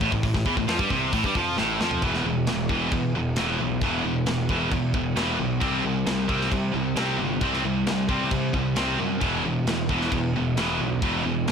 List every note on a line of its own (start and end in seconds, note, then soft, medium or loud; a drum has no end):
0.01 0.11 A1 loud
0.01 0.11 A2 loud
0.01 kick medium
0.12 0.23 A1 medium
0.12 0.23 A2 medium
0.12 kick medium
0.23 0.34 A1 medium
0.23 0.34 A2 medium
0.23 kick medium
0.23 open hi-hat medium
0.34 0.45 A1 medium
0.34 0.46 A2 medium
0.34 kick medium
0.34 snare soft
0.45 0.56 E2 loud
0.45 0.57 E3 loud
0.45 kick medium
0.57 0.67 A1 medium
0.57 0.67 A2 medium
0.57 kick medium
0.67 0.78 F2 loud
0.67 0.79 F3 loud
0.67 snare loud
0.67 open hi-hat medium
0.79 0.90 G2 loud
0.79 0.90 G3 medium
0.79 kick loud
0.90 1.11 C2 medium
0.90 1.12 C3 loud
0.90 kick medium
1.13 1.23 A1 loud
1.13 1.24 A2 loud
1.13 kick loud
1.13 open hi-hat medium
1.24 1.35 G2 loud
1.24 1.35 G3 loud
1.24 kick medium
1.35 1.56 F2 loud
1.35 1.58 F3 loud
1.35 kick medium
1.57 1.78 A1 loud
1.57 1.80 A2 loud
1.57 snare medium
1.80 2.01 F2 medium
1.80 2.03 F3 loud
1.80 snare loud
1.91 floor tom medium
2.02 2.23 E1 medium
2.02 2.24 E2 medium
2.02 2.24 B2 medium
2.02 2.25 E3 loud
2.02 kick loud
2.02 crash medium
2.14 snare soft
2.24 2.45 E1 medium
2.24 2.46 E2 medium
2.24 2.46 B2 medium
2.47 2.89 E1 loud
2.47 2.68 E2 medium
2.47 2.69 B2 medium
2.47 snare loud
2.47 crash medium
2.69 2.91 E2 medium
2.69 2.91 B2 medium
2.69 2.92 E3 loud
2.69 kick medium
2.92 3.13 E2 loud
2.92 3.13 E2 medium
2.92 3.13 B2 medium
2.92 kick loud
2.92 crash medium
3.14 3.35 E1 medium
3.14 3.35 E2 medium
3.14 3.36 B2 medium
3.36 3.58 E1 loud
3.36 3.59 E2 medium
3.36 3.59 B2 loud
3.36 3.59 E3 loud
3.36 snare loud
3.36 crash medium
3.59 3.80 B1 medium
3.59 3.80 E2 medium
3.59 3.80 B2 medium
3.81 4.02 E1 medium
3.81 4.04 E2 medium
3.81 4.04 B2 medium
3.81 4.04 E3 medium
3.81 kick loud
3.81 crash medium
4.04 4.25 E1 medium
4.04 4.25 E2 medium
4.04 4.26 B2 medium
4.26 4.68 E1 loud
4.26 4.48 E2 medium
4.26 4.48 B2 medium
4.26 snare loud
4.26 crash medium
4.49 4.71 E2 medium
4.49 4.71 B2 medium
4.49 4.71 E3 loud
4.49 kick medium
4.71 4.92 E2 loud
4.71 4.93 E2 medium
4.71 4.93 B2 medium
4.71 kick loud
4.71 crash medium
4.94 5.15 E1 medium
4.94 5.15 E2 medium
4.94 5.15 B2 medium
4.94 kick medium
5.16 5.37 E1 loud
5.16 5.37 E2 medium
5.16 5.37 B2 loud
5.16 5.38 E3 loud
5.16 snare loud
5.16 crash medium
5.38 5.60 B1 medium
5.38 5.59 E2 medium
5.38 5.60 B2 medium
5.60 5.82 C2 loud
5.60 5.83 C3 medium
5.60 5.83 G3 medium
5.60 5.83 C4 loud
5.60 kick loud
5.60 crash medium
5.84 6.05 C2 medium
5.84 6.05 C3 medium
5.84 6.05 G3 medium
6.06 6.48 C2 medium
6.06 6.27 C3 medium
6.06 6.27 G3 medium
6.06 snare loud
6.06 crash medium
6.28 6.50 C3 medium
6.28 6.50 G3 loud
6.28 6.51 C4 loud
6.28 kick medium
6.41 snare soft
6.51 6.72 C3 medium
6.51 6.72 G3 medium
6.51 kick loud
6.51 crash medium
6.74 6.95 C2 medium
6.74 6.94 C3 medium
6.74 6.95 G3 medium
6.96 7.17 C2 medium
6.96 7.17 C3 medium
6.96 7.18 G3 medium
6.96 7.19 C4 loud
6.96 snare loud
6.96 crash medium
7.19 7.40 G1 medium
7.19 7.40 C3 medium
7.19 7.40 G3 medium
7.41 7.62 C2 medium
7.41 7.62 C3 medium
7.41 7.63 G3 medium
7.41 7.63 C4 loud
7.41 kick loud
7.41 crash medium
7.54 snare soft
7.63 7.85 C2 medium
7.63 7.84 C3 medium
7.63 7.85 G3 medium
7.86 8.28 C2 medium
7.86 8.07 C3 medium
7.86 8.08 G3 medium
7.86 snare loud
7.86 crash medium
8.09 8.30 C3 loud
8.09 8.30 G3 medium
8.09 8.31 C4 loud
8.09 kick medium
8.31 8.52 C3 medium
8.31 8.52 C3 loud
8.31 8.52 G3 medium
8.31 kick loud
8.31 crash medium
8.53 8.74 C2 medium
8.53 8.74 C3 medium
8.53 8.74 G3 medium
8.53 kick medium
8.76 8.97 C2 loud
8.76 8.98 C3 medium
8.76 8.98 G3 loud
8.76 8.98 C4 loud
8.76 snare loud
8.76 crash medium
8.99 9.20 F#2 medium
8.99 9.20 C3 medium
8.99 9.20 G3 medium
9.21 9.42 E1 medium
9.21 9.43 E2 medium
9.21 9.43 B2 medium
9.21 9.43 E3 loud
9.21 kick loud
9.21 crash medium
9.44 9.65 E1 medium
9.44 9.65 E2 medium
9.44 9.65 B2 medium
9.66 10.08 E1 loud
9.66 9.88 E2 medium
9.66 9.88 B2 medium
9.66 snare loud
9.66 crash medium
9.89 10.11 E2 medium
9.89 10.11 B2 loud
9.89 10.11 E3 loud
9.89 kick medium
10.01 snare soft
10.12 10.32 E2 medium
10.12 10.33 E2 medium
10.12 10.33 B2 medium
10.12 kick loud
10.12 crash medium
10.33 10.54 E1 medium
10.33 10.56 E2 medium
10.33 10.56 B2 medium
10.56 10.77 E1 loud
10.56 10.78 E2 medium
10.56 10.79 B2 loud
10.56 10.79 E3 loud
10.56 snare loud
10.56 crash medium
10.79 11.00 B1 medium
10.79 11.00 E2 medium
10.79 11.00 B2 medium
11.02 11.23 E1 medium
11.02 11.23 E2 medium
11.02 11.24 B2 medium
11.02 11.24 E3 loud
11.02 kick loud
11.02 crash medium
11.25 11.45 E1 medium
11.25 11.45 E2 medium
11.25 11.45 B2 medium
11.47 11.52 E1 loud
11.47 11.52 E2 medium
11.47 11.52 B2 medium
11.47 snare loud
11.47 crash medium